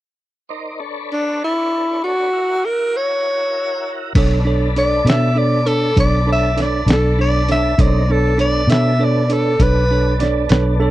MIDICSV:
0, 0, Header, 1, 7, 480
1, 0, Start_track
1, 0, Key_signature, 2, "minor"
1, 0, Tempo, 606673
1, 392, Time_signature, 12, 3, 24, 8
1, 8630, End_track
2, 0, Start_track
2, 0, Title_t, "Tenor saxophone"
2, 0, Program_c, 0, 66
2, 894, Note_on_c, 0, 62, 61
2, 1117, Note_off_c, 0, 62, 0
2, 1140, Note_on_c, 0, 64, 63
2, 1594, Note_off_c, 0, 64, 0
2, 1612, Note_on_c, 0, 66, 68
2, 2099, Note_on_c, 0, 70, 67
2, 2111, Note_off_c, 0, 66, 0
2, 2352, Note_on_c, 0, 73, 70
2, 2364, Note_off_c, 0, 70, 0
2, 3267, Note_off_c, 0, 73, 0
2, 3783, Note_on_c, 0, 74, 80
2, 4030, Note_on_c, 0, 76, 67
2, 4041, Note_off_c, 0, 74, 0
2, 4259, Note_on_c, 0, 74, 69
2, 4271, Note_off_c, 0, 76, 0
2, 4488, Note_on_c, 0, 69, 75
2, 4500, Note_off_c, 0, 74, 0
2, 4715, Note_off_c, 0, 69, 0
2, 4746, Note_on_c, 0, 74, 80
2, 4964, Note_off_c, 0, 74, 0
2, 5003, Note_on_c, 0, 76, 68
2, 5213, Note_off_c, 0, 76, 0
2, 5237, Note_on_c, 0, 74, 59
2, 5450, Note_off_c, 0, 74, 0
2, 5478, Note_on_c, 0, 69, 66
2, 5690, Note_off_c, 0, 69, 0
2, 5704, Note_on_c, 0, 74, 77
2, 5923, Note_off_c, 0, 74, 0
2, 5946, Note_on_c, 0, 76, 70
2, 6180, Note_on_c, 0, 74, 71
2, 6192, Note_off_c, 0, 76, 0
2, 6424, Note_on_c, 0, 69, 64
2, 6436, Note_off_c, 0, 74, 0
2, 6642, Note_off_c, 0, 69, 0
2, 6650, Note_on_c, 0, 74, 73
2, 6888, Note_on_c, 0, 76, 66
2, 6900, Note_off_c, 0, 74, 0
2, 7158, Note_on_c, 0, 74, 66
2, 7169, Note_off_c, 0, 76, 0
2, 7378, Note_on_c, 0, 69, 77
2, 7390, Note_off_c, 0, 74, 0
2, 7615, Note_on_c, 0, 71, 75
2, 7627, Note_off_c, 0, 69, 0
2, 8068, Note_off_c, 0, 71, 0
2, 8630, End_track
3, 0, Start_track
3, 0, Title_t, "Upright piano"
3, 0, Program_c, 1, 0
3, 8066, Note_on_c, 1, 74, 79
3, 8300, Note_off_c, 1, 74, 0
3, 8305, Note_on_c, 1, 71, 72
3, 8540, Note_off_c, 1, 71, 0
3, 8541, Note_on_c, 1, 69, 74
3, 8630, Note_off_c, 1, 69, 0
3, 8630, End_track
4, 0, Start_track
4, 0, Title_t, "Tine electric piano"
4, 0, Program_c, 2, 4
4, 3291, Note_on_c, 2, 62, 60
4, 3295, Note_on_c, 2, 69, 58
4, 3309, Note_on_c, 2, 73, 73
4, 3464, Note_off_c, 2, 62, 0
4, 3466, Note_off_c, 2, 69, 0
4, 3473, Note_off_c, 2, 73, 0
4, 3521, Note_on_c, 2, 62, 58
4, 3534, Note_on_c, 2, 69, 51
4, 3536, Note_on_c, 2, 73, 62
4, 3699, Note_off_c, 2, 62, 0
4, 3706, Note_off_c, 2, 69, 0
4, 3707, Note_off_c, 2, 73, 0
4, 3769, Note_on_c, 2, 62, 49
4, 3778, Note_on_c, 2, 69, 45
4, 3782, Note_on_c, 2, 73, 53
4, 3943, Note_off_c, 2, 62, 0
4, 3948, Note_off_c, 2, 69, 0
4, 3950, Note_off_c, 2, 73, 0
4, 3999, Note_on_c, 2, 62, 48
4, 4001, Note_on_c, 2, 69, 41
4, 4011, Note_on_c, 2, 73, 50
4, 4178, Note_off_c, 2, 62, 0
4, 4179, Note_off_c, 2, 69, 0
4, 4184, Note_off_c, 2, 73, 0
4, 4235, Note_on_c, 2, 62, 50
4, 4245, Note_on_c, 2, 69, 43
4, 4254, Note_on_c, 2, 73, 53
4, 4416, Note_off_c, 2, 62, 0
4, 4421, Note_off_c, 2, 69, 0
4, 4426, Note_off_c, 2, 73, 0
4, 4481, Note_on_c, 2, 62, 47
4, 4485, Note_on_c, 2, 69, 44
4, 4497, Note_on_c, 2, 73, 47
4, 4659, Note_off_c, 2, 62, 0
4, 4661, Note_off_c, 2, 69, 0
4, 4667, Note_off_c, 2, 73, 0
4, 4719, Note_on_c, 2, 62, 46
4, 4724, Note_on_c, 2, 69, 45
4, 4729, Note_on_c, 2, 73, 51
4, 4898, Note_off_c, 2, 62, 0
4, 4901, Note_off_c, 2, 69, 0
4, 4903, Note_off_c, 2, 73, 0
4, 4961, Note_on_c, 2, 62, 48
4, 4966, Note_on_c, 2, 69, 47
4, 4977, Note_on_c, 2, 73, 59
4, 5139, Note_off_c, 2, 62, 0
4, 5141, Note_off_c, 2, 69, 0
4, 5147, Note_off_c, 2, 73, 0
4, 5197, Note_on_c, 2, 62, 49
4, 5203, Note_on_c, 2, 69, 42
4, 5206, Note_on_c, 2, 73, 50
4, 5377, Note_off_c, 2, 62, 0
4, 5379, Note_off_c, 2, 69, 0
4, 5381, Note_off_c, 2, 73, 0
4, 5439, Note_on_c, 2, 62, 49
4, 5446, Note_on_c, 2, 69, 40
4, 5453, Note_on_c, 2, 74, 53
4, 5618, Note_off_c, 2, 62, 0
4, 5621, Note_off_c, 2, 69, 0
4, 5624, Note_off_c, 2, 74, 0
4, 5686, Note_on_c, 2, 62, 49
4, 5689, Note_on_c, 2, 69, 45
4, 5699, Note_on_c, 2, 73, 54
4, 5861, Note_off_c, 2, 62, 0
4, 5862, Note_off_c, 2, 69, 0
4, 5867, Note_off_c, 2, 73, 0
4, 5924, Note_on_c, 2, 62, 50
4, 5924, Note_on_c, 2, 69, 44
4, 5932, Note_on_c, 2, 73, 55
4, 6100, Note_off_c, 2, 62, 0
4, 6100, Note_off_c, 2, 69, 0
4, 6104, Note_off_c, 2, 73, 0
4, 6155, Note_on_c, 2, 62, 55
4, 6165, Note_on_c, 2, 69, 54
4, 6174, Note_on_c, 2, 73, 67
4, 6335, Note_off_c, 2, 62, 0
4, 6340, Note_off_c, 2, 69, 0
4, 6344, Note_off_c, 2, 73, 0
4, 6404, Note_on_c, 2, 62, 45
4, 6414, Note_on_c, 2, 69, 42
4, 6424, Note_on_c, 2, 73, 53
4, 6579, Note_off_c, 2, 62, 0
4, 6584, Note_off_c, 2, 69, 0
4, 6589, Note_off_c, 2, 73, 0
4, 6629, Note_on_c, 2, 62, 53
4, 6640, Note_on_c, 2, 69, 46
4, 6645, Note_on_c, 2, 73, 58
4, 6811, Note_off_c, 2, 62, 0
4, 6817, Note_off_c, 2, 69, 0
4, 6819, Note_off_c, 2, 73, 0
4, 6877, Note_on_c, 2, 62, 46
4, 6883, Note_on_c, 2, 69, 48
4, 6889, Note_on_c, 2, 73, 57
4, 7055, Note_off_c, 2, 62, 0
4, 7058, Note_off_c, 2, 69, 0
4, 7061, Note_off_c, 2, 73, 0
4, 7113, Note_on_c, 2, 62, 51
4, 7118, Note_on_c, 2, 69, 47
4, 7128, Note_on_c, 2, 73, 59
4, 7293, Note_off_c, 2, 62, 0
4, 7295, Note_off_c, 2, 69, 0
4, 7300, Note_off_c, 2, 73, 0
4, 7353, Note_on_c, 2, 62, 50
4, 7361, Note_on_c, 2, 69, 42
4, 7367, Note_on_c, 2, 73, 53
4, 7532, Note_off_c, 2, 62, 0
4, 7536, Note_off_c, 2, 69, 0
4, 7539, Note_off_c, 2, 73, 0
4, 7597, Note_on_c, 2, 62, 45
4, 7602, Note_on_c, 2, 69, 47
4, 7609, Note_on_c, 2, 73, 55
4, 7774, Note_off_c, 2, 62, 0
4, 7777, Note_off_c, 2, 69, 0
4, 7780, Note_off_c, 2, 73, 0
4, 7840, Note_on_c, 2, 62, 50
4, 7851, Note_on_c, 2, 69, 49
4, 7851, Note_on_c, 2, 73, 58
4, 8015, Note_off_c, 2, 62, 0
4, 8021, Note_off_c, 2, 69, 0
4, 8021, Note_off_c, 2, 73, 0
4, 8079, Note_on_c, 2, 62, 51
4, 8084, Note_on_c, 2, 69, 44
4, 8091, Note_on_c, 2, 73, 57
4, 8254, Note_off_c, 2, 62, 0
4, 8257, Note_off_c, 2, 69, 0
4, 8260, Note_off_c, 2, 73, 0
4, 8310, Note_on_c, 2, 62, 58
4, 8319, Note_on_c, 2, 69, 53
4, 8320, Note_on_c, 2, 73, 63
4, 8489, Note_off_c, 2, 62, 0
4, 8494, Note_off_c, 2, 69, 0
4, 8494, Note_off_c, 2, 73, 0
4, 8547, Note_on_c, 2, 62, 59
4, 8552, Note_on_c, 2, 69, 55
4, 8563, Note_on_c, 2, 73, 64
4, 8630, Note_off_c, 2, 62, 0
4, 8630, Note_off_c, 2, 69, 0
4, 8630, Note_off_c, 2, 73, 0
4, 8630, End_track
5, 0, Start_track
5, 0, Title_t, "Tonewheel organ"
5, 0, Program_c, 3, 16
5, 388, Note_on_c, 3, 72, 47
5, 388, Note_on_c, 3, 74, 46
5, 396, Note_on_c, 3, 70, 45
5, 397, Note_on_c, 3, 63, 48
5, 626, Note_on_c, 3, 73, 47
5, 629, Note_on_c, 3, 71, 50
5, 630, Note_off_c, 3, 72, 0
5, 631, Note_off_c, 3, 74, 0
5, 631, Note_on_c, 3, 62, 48
5, 631, Note_on_c, 3, 69, 46
5, 635, Note_off_c, 3, 63, 0
5, 635, Note_off_c, 3, 70, 0
5, 1820, Note_off_c, 3, 73, 0
5, 1822, Note_off_c, 3, 71, 0
5, 1823, Note_off_c, 3, 62, 0
5, 1823, Note_off_c, 3, 69, 0
5, 1841, Note_on_c, 3, 64, 54
5, 1846, Note_on_c, 3, 66, 52
5, 1851, Note_on_c, 3, 70, 57
5, 3266, Note_off_c, 3, 64, 0
5, 3268, Note_off_c, 3, 66, 0
5, 3271, Note_off_c, 3, 70, 0
5, 3293, Note_on_c, 3, 62, 57
5, 3294, Note_on_c, 3, 71, 60
5, 3301, Note_on_c, 3, 69, 59
5, 6134, Note_off_c, 3, 62, 0
5, 6135, Note_off_c, 3, 71, 0
5, 6139, Note_off_c, 3, 69, 0
5, 6167, Note_on_c, 3, 60, 53
5, 6167, Note_on_c, 3, 70, 57
5, 6168, Note_on_c, 3, 63, 57
5, 6397, Note_on_c, 3, 59, 59
5, 6400, Note_off_c, 3, 70, 0
5, 6401, Note_off_c, 3, 60, 0
5, 6401, Note_off_c, 3, 63, 0
5, 6403, Note_on_c, 3, 62, 56
5, 6405, Note_on_c, 3, 69, 55
5, 8630, Note_off_c, 3, 59, 0
5, 8630, Note_off_c, 3, 62, 0
5, 8630, Note_off_c, 3, 69, 0
5, 8630, End_track
6, 0, Start_track
6, 0, Title_t, "Fingered electric bass"
6, 0, Program_c, 4, 33
6, 3282, Note_on_c, 4, 35, 77
6, 3968, Note_off_c, 4, 35, 0
6, 3994, Note_on_c, 4, 47, 77
6, 4684, Note_off_c, 4, 47, 0
6, 4719, Note_on_c, 4, 35, 70
6, 5406, Note_off_c, 4, 35, 0
6, 5430, Note_on_c, 4, 35, 86
6, 6121, Note_off_c, 4, 35, 0
6, 6160, Note_on_c, 4, 35, 85
6, 6844, Note_off_c, 4, 35, 0
6, 6863, Note_on_c, 4, 47, 80
6, 7555, Note_off_c, 4, 47, 0
6, 7591, Note_on_c, 4, 35, 78
6, 8278, Note_off_c, 4, 35, 0
6, 8312, Note_on_c, 4, 35, 91
6, 8630, Note_off_c, 4, 35, 0
6, 8630, End_track
7, 0, Start_track
7, 0, Title_t, "Drums"
7, 3286, Note_on_c, 9, 42, 69
7, 3286, Note_on_c, 9, 49, 85
7, 3287, Note_on_c, 9, 36, 102
7, 3365, Note_off_c, 9, 42, 0
7, 3365, Note_off_c, 9, 49, 0
7, 3366, Note_off_c, 9, 36, 0
7, 3769, Note_on_c, 9, 42, 53
7, 3848, Note_off_c, 9, 42, 0
7, 4013, Note_on_c, 9, 42, 69
7, 4033, Note_on_c, 9, 38, 97
7, 4092, Note_off_c, 9, 42, 0
7, 4112, Note_off_c, 9, 38, 0
7, 4484, Note_on_c, 9, 42, 57
7, 4563, Note_off_c, 9, 42, 0
7, 4724, Note_on_c, 9, 36, 69
7, 4724, Note_on_c, 9, 42, 71
7, 4803, Note_off_c, 9, 36, 0
7, 4803, Note_off_c, 9, 42, 0
7, 5203, Note_on_c, 9, 42, 59
7, 5223, Note_on_c, 9, 38, 29
7, 5282, Note_off_c, 9, 42, 0
7, 5302, Note_off_c, 9, 38, 0
7, 5443, Note_on_c, 9, 42, 71
7, 5463, Note_on_c, 9, 38, 91
7, 5522, Note_off_c, 9, 42, 0
7, 5542, Note_off_c, 9, 38, 0
7, 5923, Note_on_c, 9, 42, 50
7, 5943, Note_on_c, 9, 38, 27
7, 6002, Note_off_c, 9, 42, 0
7, 6022, Note_off_c, 9, 38, 0
7, 6161, Note_on_c, 9, 36, 102
7, 6162, Note_on_c, 9, 42, 72
7, 6240, Note_off_c, 9, 36, 0
7, 6241, Note_off_c, 9, 42, 0
7, 6638, Note_on_c, 9, 42, 52
7, 6717, Note_off_c, 9, 42, 0
7, 6881, Note_on_c, 9, 42, 73
7, 6900, Note_on_c, 9, 38, 86
7, 6960, Note_off_c, 9, 42, 0
7, 6980, Note_off_c, 9, 38, 0
7, 7356, Note_on_c, 9, 42, 57
7, 7435, Note_off_c, 9, 42, 0
7, 7593, Note_on_c, 9, 36, 72
7, 7594, Note_on_c, 9, 42, 70
7, 7672, Note_off_c, 9, 36, 0
7, 7673, Note_off_c, 9, 42, 0
7, 8070, Note_on_c, 9, 42, 51
7, 8090, Note_on_c, 9, 38, 29
7, 8150, Note_off_c, 9, 42, 0
7, 8169, Note_off_c, 9, 38, 0
7, 8302, Note_on_c, 9, 42, 70
7, 8322, Note_on_c, 9, 38, 97
7, 8381, Note_off_c, 9, 42, 0
7, 8401, Note_off_c, 9, 38, 0
7, 8630, End_track
0, 0, End_of_file